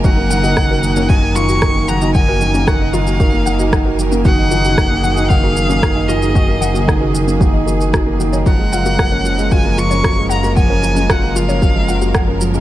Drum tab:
SH |x-xxx-xxx-xxx-xx|x-xxx-xxx-xxx-xx|x-xxx-xxx-xxx-xx|x-xxx-xxx-xxx-xx|
SD |----r-------r---|----r-------r---|----r-------r---|----r-------r---|
BD |o---o---o---o---|o---o---o---o---|o---o---o---o---|o---o---o---o---|

SH |x-xxx-xxx-xxx-xx|x-xxx-xxx-xxx-xx|
SD |----r-------r---|----r-------r---|
BD |o---o---o---o---|o---o---o---o---|